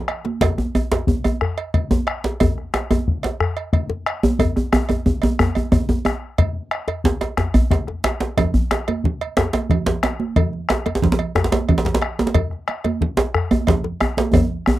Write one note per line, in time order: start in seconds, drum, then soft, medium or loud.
0.08 bombo rim medium
0.08 cowbell soft
0.08 high conga soft
0.25 djembe slap medium
0.25 high conga medium
0.41 bombo low medium
0.41 cowbell medium
0.41 djembe slap loud
0.41 djembe bass medium
0.58 bombo rim soft
0.58 djembe slap soft
0.58 djembe tone medium
0.75 cowbell soft
0.75 djembe tone medium
0.92 cowbell soft
0.92 djembe slap loud
0.92 djembe slap medium
0.92 djembe tone medium
1.07 bombo low medium
1.07 djembe tone medium
1.24 cowbell medium
1.24 djembe tone medium
1.41 bombo rim medium
1.41 djembe bass medium
1.58 cowbell soft
1.58 djembe slap soft
1.74 bombo low medium
1.74 cowbell medium
1.74 djembe slap soft
1.91 djembe slap medium
1.91 djembe tone loud
1.91 djembe tone medium
2.07 bombo rim loud
2.07 cowbell medium
2.24 djembe slap medium
2.40 bombo low medium
2.40 cowbell medium
2.40 djembe tone loud
2.40 djembe bass medium
2.58 bombo rim soft
2.58 djembe slap soft
2.74 bombo rim loud
2.74 cowbell soft
2.74 djembe slap medium
2.91 cowbell soft
2.91 djembe slap medium
2.91 djembe tone loud
2.91 djembe tone medium
3.08 bombo low medium
3.23 cowbell soft
3.23 djembe slap medium
3.40 bombo rim loud
3.40 djembe bass medium
3.57 cowbell soft
3.73 bombo low loud
3.73 cowbell soft
3.73 djembe slap soft
3.90 djembe slap medium
3.90 djembe tone medium
4.06 bombo rim loud
4.06 cowbell medium
4.23 djembe tone loud
4.39 bombo low medium
4.39 cowbell medium
4.39 djembe tone medium
4.39 djembe bass medium
4.56 bombo rim soft
4.56 djembe slap soft
4.56 djembe tone medium
4.72 bombo rim loud
4.72 cowbell soft
4.72 djembe tone loud
4.89 cowbell soft
4.89 djembe slap medium
4.89 djembe tone medium
5.06 bombo low medium
5.06 djembe tone medium
5.22 cowbell soft
5.22 djembe tone loud
5.39 bombo rim loud
5.39 djembe tone medium
5.39 djembe bass medium
5.55 cowbell soft
5.55 djembe slap soft
5.55 djembe tone medium
5.72 bombo low loud
5.72 cowbell soft
5.72 djembe tone loud
5.89 djembe slap medium
5.89 djembe tone medium
6.05 bombo rim loud
6.05 cowbell soft
6.05 djembe tone medium
6.38 bombo low loud
6.38 cowbell medium
6.38 djembe slap soft
6.38 djembe bass medium
6.71 bombo rim loud
6.71 cowbell soft
6.88 cowbell soft
6.88 djembe slap medium
6.88 djembe tone medium
7.04 bombo low medium
7.04 djembe slap loud
7.21 cowbell soft
7.21 djembe slap medium
7.37 bombo rim medium
7.37 djembe slap soft
7.37 djembe slap medium
7.37 djembe bass medium
7.54 bombo rim soft
7.54 cowbell soft
7.54 djembe bass medium
7.71 bombo rim soft
7.71 bombo low loud
7.71 cowbell medium
7.71 djembe slap medium
7.87 bombo rim soft
7.87 djembe slap soft
7.87 djembe tone soft
8.04 bombo rim loud
8.04 cowbell medium
8.04 djembe slap loud
8.04 djembe slap soft
8.20 djembe slap medium
8.37 bombo low medium
8.37 cowbell medium
8.37 djembe slap medium
8.37 high conga soft
8.37 djembe bass medium
8.37 low conga medium
8.54 bombo rim soft
8.54 djembe slap soft
8.54 djembe bass medium
8.71 bombo rim loud
8.71 cowbell medium
8.71 djembe slap medium
8.71 high conga soft
8.88 cowbell medium
8.88 djembe slap medium
8.88 djembe tone soft
8.88 high conga medium
9.04 bombo low medium
9.04 high conga soft
9.04 low conga medium
9.21 cowbell medium
9.37 bombo rim loud
9.37 djembe slap loud
9.37 djembe bass medium
9.53 cowbell medium
9.53 djembe slap medium
9.53 djembe slap soft
9.53 high conga medium
9.70 bombo low loud
9.70 cowbell medium
9.70 djembe slap soft
9.70 low conga medium
9.86 djembe slap loud
9.86 djembe slap soft
9.86 high conga soft
9.86 djembe tone soft
10.03 bombo rim loud
10.03 cowbell medium
10.03 djembe slap medium
10.20 high conga medium
10.36 bombo low loud
10.36 cowbell medium
10.36 high conga soft
10.36 low conga medium
10.36 djembe bass medium
10.53 djembe slap soft
10.69 bombo rim loud
10.69 cowbell soft
10.69 djembe slap loud
10.69 high conga soft
10.86 cowbell soft
10.86 djembe slap medium
10.86 high conga medium
10.86 djembe tone medium
10.95 djembe slap medium
11.02 bombo low medium
11.02 djembe slap medium
11.02 high conga soft
11.02 low conga medium
11.12 djembe slap medium
11.19 cowbell soft
11.35 bombo rim loud
11.35 djembe slap medium
11.35 djembe bass medium
11.44 djembe slap medium
11.52 cowbell soft
11.52 djembe slap loud
11.52 high conga medium
11.69 bombo low medium
11.69 cowbell soft
11.69 low conga medium
11.78 djembe slap medium
11.85 djembe slap medium
11.85 djembe tone medium
11.85 high conga soft
11.94 djembe slap loud
12.02 bombo rim medium
12.02 cowbell soft
12.19 djembe slap medium
12.19 high conga medium
12.27 djembe slap medium
12.35 bombo low medium
12.35 cowbell medium
12.35 high conga soft
12.35 djembe bass medium
12.35 low conga medium
12.51 bombo rim soft
12.51 djembe slap soft
12.68 bombo rim medium
12.68 cowbell soft
12.68 high conga soft
12.84 cowbell soft
12.84 djembe slap medium
12.84 djembe tone medium
12.84 high conga medium
13.01 bombo low medium
13.01 high conga soft
13.01 low conga medium
13.17 cowbell soft
13.17 djembe slap loud
13.34 bombo rim loud
13.34 djembe bass medium
13.51 cowbell soft
13.51 high conga medium
13.51 djembe tone medium
13.67 bombo low loud
13.67 cowbell medium
13.67 djembe slap loud
13.67 low conga medium
13.84 djembe slap medium
13.84 high conga soft
13.84 djembe tone medium
14.01 bombo rim loud
14.01 cowbell medium
14.01 djembe tone medium
14.17 djembe slap loud
14.17 high conga medium
14.33 bombo low loud
14.33 cowbell medium
14.33 djembe tone loud
14.33 djembe bass medium
14.33 low conga medium
14.50 djembe slap soft
14.66 bombo rim medium
14.66 djembe tone loud